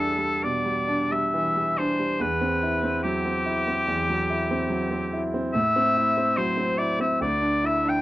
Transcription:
0.00 0.38 E2 medium
0.00 1.34 E3 soft
0.00 0.18 G3 soft
0.00 0.88 D4 soft
0.00 0.46 A4 medium
0.18 0.57 G3 soft
0.44 0.81 B2 soft
0.44 1.13 D5 medium
0.66 1.02 G3 soft
0.88 1.24 D4 soft
1.12 1.47 G3 soft
1.12 1.79 E5 medium
1.34 1.69 E3 soft
1.56 1.90 G3 soft
1.78 2.12 D4 soft
1.78 2.22 C5 medium
1.99 2.20 G3 soft
2.20 3.81 E2 soft
2.20 3.02 B4 medium
2.41 2.74 C4 soft
2.63 2.95 E4 soft
2.83 3.15 C4 medium
3.03 3.36 F#3 medium
3.03 5.21 G4 medium
3.26 3.57 C4 soft
3.46 3.78 E4 soft
3.68 4.00 C4 soft
3.87 5.49 E2 soft
4.09 4.41 F#3 soft
4.30 4.61 E4 medium
4.51 4.82 C4 soft
4.70 5.02 F#3 medium
4.91 5.24 C4 soft
5.13 5.46 E4 soft
5.34 5.54 C4 soft
5.54 7.18 A2 medium
5.54 6.38 E5 medium
5.76 6.09 C4 soft
5.97 6.29 E4 medium
6.17 6.50 C4 soft
6.37 6.71 F#3 medium
6.37 6.80 C5 medium
6.57 6.91 C4 soft
6.78 7.12 E4 soft
6.78 6.99 D5 medium
7.00 7.21 C4 soft
7.00 7.21 E5 medium
7.20 8.02 D2 medium
7.20 7.67 D5 medium
7.41 7.76 D4 soft
7.64 7.99 E4 soft
7.64 7.91 E5 medium
7.85 8.02 D4 soft
7.89 8.02 G5 medium

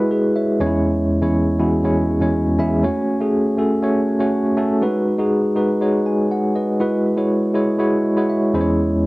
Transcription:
0.00 0.60 G#3 medium
0.00 0.62 E4 medium
0.00 0.62 F#4 medium
0.00 0.11 B4 medium
0.11 0.35 G#4 medium
0.11 0.34 B4 medium
0.36 0.60 C#5 medium
0.36 0.83 E5 medium
0.60 1.18 E2 medium
0.60 1.19 G#3 medium
0.60 1.19 C#4 medium
0.60 0.66 D#4 medium
0.60 1.19 C#5 loud
0.67 1.21 E4 medium
1.22 1.57 E2 medium
1.22 1.57 G#3 medium
1.22 1.57 C#4 medium
1.22 1.57 E4 medium
1.22 1.58 C#5 medium
1.59 1.83 E2 medium
1.59 1.83 G#3 medium
1.59 1.83 C#4 medium
1.59 1.83 E4 medium
1.59 1.83 F#4 medium
1.84 2.19 E2 medium
1.84 2.19 G#3 medium
1.84 2.19 C#4 medium
1.84 2.20 E4 medium
1.84 2.20 C#5 medium
2.21 2.56 E2 medium
2.21 2.56 G#3 medium
2.21 2.56 C#4 medium
2.21 2.57 E4 medium
2.21 2.57 C#5 medium
2.58 2.82 E2 medium
2.58 2.82 G#3 medium
2.58 2.82 C#4 medium
2.58 2.82 E4 medium
2.58 2.82 E5 loud
2.83 3.18 A3 medium
2.83 3.18 C#4 medium
2.83 3.19 F#4 medium
2.83 3.19 C#5 medium
3.20 3.55 A3 medium
3.20 3.56 C#4 medium
3.20 3.56 F#4 medium
3.20 3.56 G#4 medium
3.58 3.81 A3 medium
3.58 3.81 C#4 medium
3.58 3.81 F#4 medium
3.58 3.82 A4 medium
3.82 4.17 A3 medium
3.82 4.18 C#4 medium
3.82 4.18 F#4 medium
3.82 4.18 C#5 loud
4.19 4.55 A3 medium
4.19 4.55 C#4 medium
4.19 4.55 F#4 medium
4.19 4.55 C#5 medium
4.57 4.80 A3 medium
4.57 4.80 C#4 medium
4.57 4.81 F#4 medium
4.57 4.81 A4 loud
4.81 5.17 G#3 medium
4.81 5.17 D#4 medium
4.81 5.17 F#4 medium
4.81 5.17 B4 loud
5.18 5.54 G#3 medium
5.18 5.54 D#4 medium
5.18 5.54 F#4 medium
5.18 5.54 G#4 medium
5.56 5.79 G#3 medium
5.56 5.79 D#4 medium
5.56 5.80 F#4 medium
5.56 5.80 B4 medium
5.81 6.16 G#3 medium
5.81 6.16 D#4 medium
5.81 6.16 F#4 medium
5.81 6.06 C#5 medium
6.06 6.29 G#5 medium
6.31 6.54 D#5 medium
6.31 6.55 F#5 medium
6.55 6.80 B4 medium
6.55 7.03 D#5 medium
6.80 7.15 G#3 medium
6.80 7.15 E4 medium
6.80 7.15 F#4 medium
6.80 7.16 B4 medium
7.17 7.52 G#3 medium
7.17 7.52 E4 medium
7.17 7.52 F#4 medium
7.17 7.53 C#5 medium
7.54 7.78 G#3 medium
7.54 7.78 E4 medium
7.54 7.78 F#4 medium
7.54 7.78 C#5 medium
7.79 8.14 G#3 medium
7.79 8.14 E4 medium
7.79 8.14 F#4 medium
7.79 8.15 C#5 medium
8.16 8.51 G#3 medium
8.16 8.52 E4 medium
8.16 8.52 F#4 medium
8.16 8.52 C#5 medium
8.29 8.75 E5 medium
8.54 9.06 E2 medium
8.54 9.06 G#3 medium
8.54 9.06 C#4 medium
8.54 9.06 E4 medium
8.54 8.60 C5 medium
8.61 9.06 C#5 loud

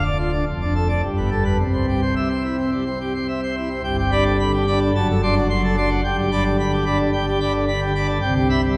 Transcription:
0.00 0.43 D1 medium
0.00 0.43 D2 medium
0.05 0.17 D5 medium
0.18 0.31 F4 medium
0.32 0.45 D4 medium
0.47 1.01 F1 medium
0.47 1.01 F2 medium
0.61 0.74 D4 medium
0.75 0.88 A4 medium
0.89 1.01 D5 medium
1.03 1.58 G1 medium
1.03 1.58 G2 medium
1.17 1.30 B3 medium
1.30 1.43 A4 medium
1.45 1.57 B4 medium
1.59 3.80 C2 medium
1.59 3.80 C3 medium
1.73 1.86 C4 medium
1.88 2.01 G4 medium
2.02 2.14 C5 medium
2.16 2.29 E5 medium
2.30 2.42 C5 medium
2.44 2.56 E4 medium
2.58 2.70 C4 soft
2.72 2.84 G3 medium
2.86 2.99 C4 medium
3.01 3.13 G4 medium
3.14 3.27 C5 medium
3.28 3.41 E5 medium
3.43 3.55 C5 medium
3.57 3.69 E4 medium
3.71 3.82 C4 medium
3.84 4.91 G1 medium
3.84 4.91 G2 medium
3.84 3.97 G5 medium
3.98 4.11 G4 medium
4.12 4.37 D4 medium
4.12 4.24 D5 medium
4.12 4.24 B5 medium
4.26 4.37 D3 medium
4.39 4.64 D3 medium
4.39 4.52 B5 medium
4.53 4.66 G4 medium
4.67 4.91 D4 medium
4.67 4.79 D5 medium
4.67 4.79 B5 medium
4.82 4.93 D3 medium
4.95 6.01 F#1 medium
4.95 6.01 F#2 medium
4.95 5.07 A5 medium
5.09 5.21 A4 medium
5.23 5.47 D4 medium
5.23 5.34 D5 medium
5.23 5.34 C6 medium
5.36 5.48 F#3 medium
5.50 5.74 F#3 medium
5.50 5.62 C6 medium
5.64 5.76 A4 medium
5.77 6.00 D4 medium
5.77 5.89 D5 medium
5.77 5.89 C6 medium
5.91 6.02 F#3 medium
6.04 8.18 G1 medium
6.04 8.18 G2 medium
6.04 6.17 G5 medium
6.19 6.31 G4 medium
6.32 6.56 D4 medium
6.32 6.43 D5 medium
6.32 6.43 B5 medium
6.46 6.58 D3 medium
6.59 6.84 D3 medium
6.59 6.72 B5 medium
6.72 6.85 G4 medium
6.86 7.11 D4 medium
6.86 6.98 D5 medium
6.86 6.98 B5 medium
6.99 7.11 D3 medium
7.13 7.38 D3 medium
7.13 7.25 G5 medium
7.26 7.39 G4 medium
7.41 7.65 D4 medium
7.41 7.52 D5 medium
7.41 7.52 B5 medium
7.55 7.66 D3 medium
7.68 7.92 D3 medium
7.68 7.80 B5 medium
7.81 7.93 G4 medium
7.95 8.18 D4 medium
7.95 8.07 D5 medium
7.95 8.07 B5 medium
8.09 8.20 D3 medium
8.22 8.77 C2 medium
8.22 8.77 C3 medium
8.22 8.34 G5 medium
8.35 8.48 G4 medium
8.50 8.61 E5 medium
8.50 8.61 B5 loud
8.64 8.75 G3 medium

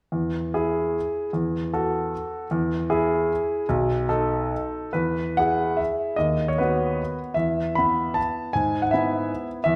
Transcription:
0.12 0.53 E2 soft
0.54 1.30 E4 soft
0.54 1.30 G#4 soft
1.33 1.71 E2 soft
1.74 2.47 F#4 soft
1.74 2.47 A4 soft
2.51 2.89 E2 soft
2.90 3.66 E4 soft
2.90 3.65 G#4 medium
3.69 4.08 B1 medium
4.09 4.90 D#4 soft
4.09 4.90 A4 medium
4.93 5.36 E2 soft
4.93 5.37 B4 soft
5.37 6.16 E4 soft
5.37 6.16 G#4 soft
5.37 5.80 F#5 medium
5.77 6.17 E5 soft
6.16 6.58 D#2 soft
6.16 6.48 D#5 medium
6.48 6.59 C#5 soft
6.58 7.34 B3 soft
6.58 7.34 F#4 soft
6.58 7.18 B4 soft
7.34 7.75 E2 soft
7.34 7.76 E5 medium
7.75 8.52 B3 soft
7.75 8.52 E4 soft
7.75 8.16 B5 medium
8.14 8.54 A5 medium
8.53 8.92 G#2 soft
8.53 8.82 G#5 medium
8.82 8.92 F#5 medium
8.91 9.62 B3 soft
8.91 9.62 E4 soft
8.91 9.47 E5 medium
9.64 9.76 E2 soft
9.64 9.76 E5 medium

